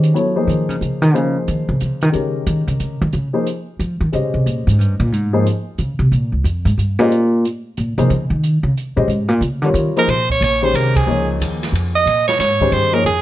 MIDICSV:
0, 0, Header, 1, 5, 480
1, 0, Start_track
1, 0, Tempo, 330943
1, 215, Time_signature, 3, 2, 24, 8
1, 19170, End_track
2, 0, Start_track
2, 0, Title_t, "Soprano saxophone"
2, 0, Program_c, 0, 64
2, 14485, Note_on_c, 0, 70, 103
2, 14651, Note_on_c, 0, 72, 94
2, 14673, Note_off_c, 0, 70, 0
2, 14943, Note_off_c, 0, 72, 0
2, 14961, Note_on_c, 0, 73, 82
2, 15104, Note_off_c, 0, 73, 0
2, 15137, Note_on_c, 0, 73, 83
2, 15426, Note_on_c, 0, 72, 81
2, 15448, Note_off_c, 0, 73, 0
2, 15603, Note_on_c, 0, 70, 76
2, 15625, Note_off_c, 0, 72, 0
2, 15901, Note_on_c, 0, 68, 73
2, 15923, Note_off_c, 0, 70, 0
2, 16373, Note_off_c, 0, 68, 0
2, 17337, Note_on_c, 0, 75, 100
2, 17778, Note_off_c, 0, 75, 0
2, 17806, Note_on_c, 0, 73, 87
2, 17965, Note_off_c, 0, 73, 0
2, 17980, Note_on_c, 0, 73, 82
2, 18454, Note_on_c, 0, 72, 81
2, 18476, Note_off_c, 0, 73, 0
2, 18773, Note_on_c, 0, 70, 83
2, 18794, Note_off_c, 0, 72, 0
2, 18937, Note_off_c, 0, 70, 0
2, 18946, Note_on_c, 0, 68, 89
2, 19170, Note_off_c, 0, 68, 0
2, 19170, End_track
3, 0, Start_track
3, 0, Title_t, "Grand piano"
3, 0, Program_c, 1, 0
3, 0, Note_on_c, 1, 56, 60
3, 0, Note_on_c, 1, 61, 57
3, 0, Note_on_c, 1, 67, 55
3, 0, Note_on_c, 1, 72, 57
3, 0, Note_on_c, 1, 75, 67
3, 177, Note_off_c, 1, 56, 0
3, 178, Note_off_c, 1, 61, 0
3, 178, Note_off_c, 1, 67, 0
3, 179, Note_off_c, 1, 72, 0
3, 183, Note_off_c, 1, 75, 0
3, 207, Note_on_c, 1, 59, 50
3, 210, Note_on_c, 1, 54, 54
3, 216, Note_on_c, 1, 64, 47
3, 223, Note_on_c, 1, 73, 61
3, 224, Note_on_c, 1, 69, 47
3, 489, Note_off_c, 1, 59, 0
3, 491, Note_off_c, 1, 54, 0
3, 494, Note_off_c, 1, 64, 0
3, 497, Note_off_c, 1, 73, 0
3, 498, Note_off_c, 1, 69, 0
3, 517, Note_on_c, 1, 58, 52
3, 519, Note_on_c, 1, 53, 57
3, 525, Note_on_c, 1, 72, 60
3, 528, Note_on_c, 1, 63, 53
3, 531, Note_on_c, 1, 68, 53
3, 1553, Note_off_c, 1, 53, 0
3, 1553, Note_off_c, 1, 58, 0
3, 1556, Note_off_c, 1, 72, 0
3, 1558, Note_off_c, 1, 63, 0
3, 1559, Note_off_c, 1, 68, 0
3, 1644, Note_on_c, 1, 53, 53
3, 1644, Note_on_c, 1, 58, 53
3, 1652, Note_on_c, 1, 63, 48
3, 1659, Note_on_c, 1, 68, 48
3, 1664, Note_on_c, 1, 72, 62
3, 2992, Note_off_c, 1, 53, 0
3, 2992, Note_off_c, 1, 58, 0
3, 2996, Note_off_c, 1, 63, 0
3, 3000, Note_off_c, 1, 68, 0
3, 3002, Note_off_c, 1, 72, 0
3, 3071, Note_on_c, 1, 51, 56
3, 3080, Note_on_c, 1, 56, 52
3, 3080, Note_on_c, 1, 61, 49
3, 3088, Note_on_c, 1, 67, 52
3, 3091, Note_on_c, 1, 70, 59
3, 4427, Note_off_c, 1, 51, 0
3, 4431, Note_off_c, 1, 56, 0
3, 4431, Note_off_c, 1, 61, 0
3, 4435, Note_off_c, 1, 67, 0
3, 4437, Note_off_c, 1, 70, 0
3, 4831, Note_on_c, 1, 53, 53
3, 4840, Note_on_c, 1, 58, 53
3, 4841, Note_on_c, 1, 68, 54
3, 4843, Note_on_c, 1, 63, 55
3, 4847, Note_on_c, 1, 72, 62
3, 4998, Note_off_c, 1, 53, 0
3, 5002, Note_off_c, 1, 58, 0
3, 5003, Note_off_c, 1, 68, 0
3, 5004, Note_off_c, 1, 63, 0
3, 5006, Note_off_c, 1, 72, 0
3, 5981, Note_on_c, 1, 56, 51
3, 5984, Note_on_c, 1, 61, 47
3, 5989, Note_on_c, 1, 67, 49
3, 5994, Note_on_c, 1, 72, 48
3, 5999, Note_on_c, 1, 75, 62
3, 7322, Note_off_c, 1, 56, 0
3, 7324, Note_off_c, 1, 61, 0
3, 7327, Note_off_c, 1, 67, 0
3, 7329, Note_off_c, 1, 72, 0
3, 7331, Note_off_c, 1, 75, 0
3, 7733, Note_on_c, 1, 58, 61
3, 7735, Note_on_c, 1, 53, 68
3, 7735, Note_on_c, 1, 63, 64
3, 7735, Note_on_c, 1, 68, 62
3, 7746, Note_on_c, 1, 72, 72
3, 7890, Note_off_c, 1, 53, 0
3, 7890, Note_off_c, 1, 58, 0
3, 7890, Note_off_c, 1, 63, 0
3, 7890, Note_off_c, 1, 68, 0
3, 7896, Note_off_c, 1, 72, 0
3, 10142, Note_on_c, 1, 56, 66
3, 10143, Note_on_c, 1, 61, 58
3, 10151, Note_on_c, 1, 67, 64
3, 10154, Note_on_c, 1, 72, 58
3, 10156, Note_on_c, 1, 75, 71
3, 10293, Note_off_c, 1, 56, 0
3, 10293, Note_off_c, 1, 61, 0
3, 10297, Note_off_c, 1, 67, 0
3, 10299, Note_off_c, 1, 72, 0
3, 10300, Note_off_c, 1, 75, 0
3, 11569, Note_on_c, 1, 53, 61
3, 11572, Note_on_c, 1, 58, 61
3, 11572, Note_on_c, 1, 63, 58
3, 11574, Note_on_c, 1, 68, 59
3, 11582, Note_on_c, 1, 72, 71
3, 11725, Note_off_c, 1, 53, 0
3, 11726, Note_off_c, 1, 58, 0
3, 11727, Note_off_c, 1, 63, 0
3, 11728, Note_off_c, 1, 68, 0
3, 11732, Note_off_c, 1, 72, 0
3, 13001, Note_on_c, 1, 56, 64
3, 13003, Note_on_c, 1, 61, 53
3, 13004, Note_on_c, 1, 67, 55
3, 13010, Note_on_c, 1, 72, 59
3, 13016, Note_on_c, 1, 75, 74
3, 13160, Note_off_c, 1, 56, 0
3, 13161, Note_off_c, 1, 61, 0
3, 13161, Note_off_c, 1, 67, 0
3, 13164, Note_off_c, 1, 72, 0
3, 13167, Note_off_c, 1, 75, 0
3, 13980, Note_on_c, 1, 48, 48
3, 13983, Note_on_c, 1, 55, 59
3, 13983, Note_on_c, 1, 65, 50
3, 13989, Note_on_c, 1, 70, 54
3, 13996, Note_on_c, 1, 73, 61
3, 14422, Note_off_c, 1, 48, 0
3, 14424, Note_off_c, 1, 55, 0
3, 14424, Note_off_c, 1, 65, 0
3, 14427, Note_off_c, 1, 70, 0
3, 14430, Note_off_c, 1, 73, 0
3, 14451, Note_on_c, 1, 53, 72
3, 14455, Note_on_c, 1, 58, 68
3, 14462, Note_on_c, 1, 63, 64
3, 14463, Note_on_c, 1, 68, 66
3, 14471, Note_on_c, 1, 72, 79
3, 14604, Note_off_c, 1, 53, 0
3, 14606, Note_off_c, 1, 58, 0
3, 14609, Note_off_c, 1, 63, 0
3, 14609, Note_off_c, 1, 68, 0
3, 14613, Note_off_c, 1, 72, 0
3, 15402, Note_on_c, 1, 51, 64
3, 15409, Note_on_c, 1, 56, 61
3, 15409, Note_on_c, 1, 67, 59
3, 15413, Note_on_c, 1, 61, 58
3, 15422, Note_on_c, 1, 72, 69
3, 16021, Note_off_c, 1, 51, 0
3, 16025, Note_off_c, 1, 56, 0
3, 16025, Note_off_c, 1, 67, 0
3, 16027, Note_off_c, 1, 61, 0
3, 16031, Note_off_c, 1, 72, 0
3, 16054, Note_on_c, 1, 53, 58
3, 16057, Note_on_c, 1, 58, 58
3, 16068, Note_on_c, 1, 68, 51
3, 16071, Note_on_c, 1, 63, 56
3, 16076, Note_on_c, 1, 73, 64
3, 17393, Note_off_c, 1, 53, 0
3, 17394, Note_off_c, 1, 58, 0
3, 17400, Note_off_c, 1, 68, 0
3, 17401, Note_off_c, 1, 63, 0
3, 17404, Note_off_c, 1, 73, 0
3, 18288, Note_on_c, 1, 51, 68
3, 18289, Note_on_c, 1, 56, 61
3, 18300, Note_on_c, 1, 61, 59
3, 18302, Note_on_c, 1, 67, 60
3, 18306, Note_on_c, 1, 72, 76
3, 18736, Note_off_c, 1, 51, 0
3, 18736, Note_off_c, 1, 56, 0
3, 18740, Note_on_c, 1, 53, 63
3, 18742, Note_off_c, 1, 61, 0
3, 18743, Note_off_c, 1, 67, 0
3, 18744, Note_off_c, 1, 72, 0
3, 18757, Note_on_c, 1, 58, 60
3, 18757, Note_on_c, 1, 63, 60
3, 18759, Note_on_c, 1, 68, 57
3, 18763, Note_on_c, 1, 73, 67
3, 18907, Note_off_c, 1, 53, 0
3, 18915, Note_off_c, 1, 58, 0
3, 18915, Note_off_c, 1, 63, 0
3, 18916, Note_off_c, 1, 68, 0
3, 18919, Note_off_c, 1, 73, 0
3, 19170, End_track
4, 0, Start_track
4, 0, Title_t, "Upright bass"
4, 0, Program_c, 2, 32
4, 0, Note_on_c, 2, 51, 104
4, 162, Note_off_c, 2, 51, 0
4, 687, Note_on_c, 2, 51, 78
4, 997, Note_off_c, 2, 51, 0
4, 997, Note_on_c, 2, 49, 92
4, 1168, Note_off_c, 2, 49, 0
4, 1175, Note_on_c, 2, 49, 77
4, 1477, Note_off_c, 2, 49, 0
4, 1477, Note_on_c, 2, 51, 103
4, 1671, Note_off_c, 2, 51, 0
4, 1671, Note_on_c, 2, 49, 79
4, 1965, Note_off_c, 2, 49, 0
4, 2147, Note_on_c, 2, 51, 85
4, 2438, Note_off_c, 2, 51, 0
4, 2447, Note_on_c, 2, 49, 93
4, 2615, Note_off_c, 2, 49, 0
4, 2636, Note_on_c, 2, 49, 73
4, 2935, Note_off_c, 2, 49, 0
4, 2935, Note_on_c, 2, 51, 93
4, 3100, Note_off_c, 2, 51, 0
4, 3107, Note_on_c, 2, 49, 76
4, 3405, Note_off_c, 2, 49, 0
4, 3577, Note_on_c, 2, 51, 93
4, 3872, Note_off_c, 2, 51, 0
4, 3881, Note_on_c, 2, 49, 89
4, 4054, Note_off_c, 2, 49, 0
4, 4064, Note_on_c, 2, 49, 70
4, 4365, Note_off_c, 2, 49, 0
4, 4373, Note_on_c, 2, 51, 106
4, 4536, Note_off_c, 2, 51, 0
4, 4544, Note_on_c, 2, 49, 89
4, 4730, Note_off_c, 2, 49, 0
4, 5504, Note_on_c, 2, 53, 83
4, 5801, Note_off_c, 2, 53, 0
4, 5809, Note_on_c, 2, 51, 90
4, 5979, Note_off_c, 2, 51, 0
4, 5998, Note_on_c, 2, 49, 87
4, 6284, Note_off_c, 2, 49, 0
4, 6293, Note_on_c, 2, 48, 80
4, 6461, Note_off_c, 2, 48, 0
4, 6472, Note_on_c, 2, 46, 75
4, 6766, Note_off_c, 2, 46, 0
4, 6775, Note_on_c, 2, 44, 93
4, 6940, Note_off_c, 2, 44, 0
4, 6940, Note_on_c, 2, 43, 75
4, 7239, Note_off_c, 2, 43, 0
4, 7248, Note_on_c, 2, 46, 110
4, 7427, Note_off_c, 2, 46, 0
4, 7427, Note_on_c, 2, 44, 65
4, 7908, Note_off_c, 2, 44, 0
4, 8391, Note_on_c, 2, 49, 78
4, 8679, Note_off_c, 2, 49, 0
4, 8688, Note_on_c, 2, 48, 100
4, 8858, Note_off_c, 2, 48, 0
4, 8872, Note_on_c, 2, 46, 80
4, 9161, Note_off_c, 2, 46, 0
4, 9169, Note_on_c, 2, 37, 65
4, 9336, Note_off_c, 2, 37, 0
4, 9344, Note_on_c, 2, 41, 70
4, 9640, Note_off_c, 2, 41, 0
4, 9649, Note_on_c, 2, 44, 99
4, 9818, Note_off_c, 2, 44, 0
4, 9829, Note_on_c, 2, 43, 75
4, 10135, Note_off_c, 2, 43, 0
4, 10135, Note_on_c, 2, 46, 99
4, 10786, Note_off_c, 2, 46, 0
4, 11282, Note_on_c, 2, 46, 78
4, 11563, Note_off_c, 2, 46, 0
4, 11571, Note_on_c, 2, 48, 89
4, 11738, Note_off_c, 2, 48, 0
4, 11749, Note_on_c, 2, 49, 88
4, 12033, Note_off_c, 2, 49, 0
4, 12042, Note_on_c, 2, 51, 100
4, 12492, Note_off_c, 2, 51, 0
4, 12521, Note_on_c, 2, 49, 92
4, 12626, Note_off_c, 2, 49, 0
4, 13007, Note_on_c, 2, 46, 89
4, 13159, Note_off_c, 2, 46, 0
4, 13167, Note_on_c, 2, 44, 78
4, 13466, Note_off_c, 2, 44, 0
4, 13466, Note_on_c, 2, 46, 85
4, 13637, Note_off_c, 2, 46, 0
4, 13646, Note_on_c, 2, 49, 90
4, 13950, Note_off_c, 2, 49, 0
4, 13950, Note_on_c, 2, 50, 97
4, 14118, Note_off_c, 2, 50, 0
4, 14126, Note_on_c, 2, 51, 94
4, 14315, Note_off_c, 2, 51, 0
4, 14613, Note_on_c, 2, 46, 74
4, 15081, Note_off_c, 2, 46, 0
4, 15095, Note_on_c, 2, 34, 82
4, 15562, Note_off_c, 2, 34, 0
4, 15570, Note_on_c, 2, 36, 78
4, 16040, Note_off_c, 2, 36, 0
4, 16054, Note_on_c, 2, 37, 72
4, 16522, Note_off_c, 2, 37, 0
4, 16534, Note_on_c, 2, 39, 80
4, 16993, Note_off_c, 2, 39, 0
4, 17002, Note_on_c, 2, 41, 82
4, 17475, Note_off_c, 2, 41, 0
4, 17490, Note_on_c, 2, 46, 75
4, 17959, Note_off_c, 2, 46, 0
4, 17968, Note_on_c, 2, 44, 75
4, 18438, Note_off_c, 2, 44, 0
4, 18445, Note_on_c, 2, 43, 85
4, 18916, Note_off_c, 2, 43, 0
4, 18928, Note_on_c, 2, 41, 80
4, 19170, Note_off_c, 2, 41, 0
4, 19170, End_track
5, 0, Start_track
5, 0, Title_t, "Drums"
5, 52, Note_on_c, 9, 42, 45
5, 197, Note_off_c, 9, 42, 0
5, 232, Note_on_c, 9, 42, 35
5, 377, Note_off_c, 9, 42, 0
5, 714, Note_on_c, 9, 42, 47
5, 859, Note_off_c, 9, 42, 0
5, 1019, Note_on_c, 9, 42, 40
5, 1164, Note_off_c, 9, 42, 0
5, 1193, Note_on_c, 9, 42, 42
5, 1338, Note_off_c, 9, 42, 0
5, 1677, Note_on_c, 9, 42, 38
5, 1822, Note_off_c, 9, 42, 0
5, 2143, Note_on_c, 9, 42, 51
5, 2288, Note_off_c, 9, 42, 0
5, 2619, Note_on_c, 9, 42, 46
5, 2764, Note_off_c, 9, 42, 0
5, 2922, Note_on_c, 9, 42, 44
5, 3067, Note_off_c, 9, 42, 0
5, 3096, Note_on_c, 9, 42, 40
5, 3241, Note_off_c, 9, 42, 0
5, 3576, Note_on_c, 9, 42, 53
5, 3721, Note_off_c, 9, 42, 0
5, 3885, Note_on_c, 9, 42, 44
5, 4031, Note_off_c, 9, 42, 0
5, 4060, Note_on_c, 9, 42, 44
5, 4205, Note_off_c, 9, 42, 0
5, 4535, Note_on_c, 9, 42, 36
5, 4680, Note_off_c, 9, 42, 0
5, 5028, Note_on_c, 9, 42, 51
5, 5173, Note_off_c, 9, 42, 0
5, 5517, Note_on_c, 9, 42, 41
5, 5662, Note_off_c, 9, 42, 0
5, 5991, Note_on_c, 9, 42, 40
5, 6136, Note_off_c, 9, 42, 0
5, 6481, Note_on_c, 9, 42, 52
5, 6626, Note_off_c, 9, 42, 0
5, 6796, Note_on_c, 9, 42, 44
5, 6941, Note_off_c, 9, 42, 0
5, 6976, Note_on_c, 9, 42, 39
5, 7121, Note_off_c, 9, 42, 0
5, 7449, Note_on_c, 9, 42, 39
5, 7594, Note_off_c, 9, 42, 0
5, 7925, Note_on_c, 9, 42, 51
5, 8070, Note_off_c, 9, 42, 0
5, 8387, Note_on_c, 9, 42, 43
5, 8532, Note_off_c, 9, 42, 0
5, 8887, Note_on_c, 9, 42, 39
5, 9033, Note_off_c, 9, 42, 0
5, 9358, Note_on_c, 9, 42, 54
5, 9503, Note_off_c, 9, 42, 0
5, 9671, Note_on_c, 9, 42, 44
5, 9816, Note_off_c, 9, 42, 0
5, 9845, Note_on_c, 9, 42, 45
5, 9990, Note_off_c, 9, 42, 0
5, 10323, Note_on_c, 9, 42, 40
5, 10468, Note_off_c, 9, 42, 0
5, 10807, Note_on_c, 9, 42, 44
5, 10952, Note_off_c, 9, 42, 0
5, 11275, Note_on_c, 9, 42, 53
5, 11420, Note_off_c, 9, 42, 0
5, 11585, Note_on_c, 9, 42, 45
5, 11730, Note_off_c, 9, 42, 0
5, 11751, Note_on_c, 9, 42, 39
5, 11896, Note_off_c, 9, 42, 0
5, 12235, Note_on_c, 9, 42, 51
5, 12380, Note_off_c, 9, 42, 0
5, 12725, Note_on_c, 9, 42, 44
5, 12870, Note_off_c, 9, 42, 0
5, 13192, Note_on_c, 9, 42, 41
5, 13337, Note_off_c, 9, 42, 0
5, 13666, Note_on_c, 9, 42, 53
5, 13811, Note_off_c, 9, 42, 0
5, 14144, Note_on_c, 9, 42, 53
5, 14289, Note_off_c, 9, 42, 0
5, 14457, Note_on_c, 9, 42, 44
5, 14602, Note_off_c, 9, 42, 0
5, 14628, Note_on_c, 9, 51, 56
5, 14773, Note_off_c, 9, 51, 0
5, 14936, Note_on_c, 9, 36, 48
5, 15081, Note_off_c, 9, 36, 0
5, 15115, Note_on_c, 9, 44, 55
5, 15115, Note_on_c, 9, 51, 68
5, 15260, Note_off_c, 9, 44, 0
5, 15260, Note_off_c, 9, 51, 0
5, 15596, Note_on_c, 9, 51, 63
5, 15741, Note_off_c, 9, 51, 0
5, 15899, Note_on_c, 9, 36, 80
5, 15902, Note_on_c, 9, 51, 66
5, 16044, Note_off_c, 9, 36, 0
5, 16047, Note_off_c, 9, 51, 0
5, 16557, Note_on_c, 9, 44, 55
5, 16557, Note_on_c, 9, 51, 68
5, 16702, Note_off_c, 9, 44, 0
5, 16702, Note_off_c, 9, 51, 0
5, 16867, Note_on_c, 9, 38, 32
5, 16869, Note_on_c, 9, 51, 40
5, 17012, Note_off_c, 9, 38, 0
5, 17014, Note_off_c, 9, 51, 0
5, 17047, Note_on_c, 9, 51, 58
5, 17192, Note_off_c, 9, 51, 0
5, 17506, Note_on_c, 9, 51, 51
5, 17652, Note_off_c, 9, 51, 0
5, 17822, Note_on_c, 9, 38, 50
5, 17967, Note_off_c, 9, 38, 0
5, 17978, Note_on_c, 9, 38, 35
5, 17979, Note_on_c, 9, 44, 65
5, 17979, Note_on_c, 9, 51, 67
5, 18123, Note_off_c, 9, 38, 0
5, 18124, Note_off_c, 9, 44, 0
5, 18124, Note_off_c, 9, 51, 0
5, 18286, Note_on_c, 9, 36, 46
5, 18431, Note_off_c, 9, 36, 0
5, 18446, Note_on_c, 9, 51, 56
5, 18591, Note_off_c, 9, 51, 0
5, 18944, Note_on_c, 9, 51, 52
5, 19089, Note_off_c, 9, 51, 0
5, 19170, End_track
0, 0, End_of_file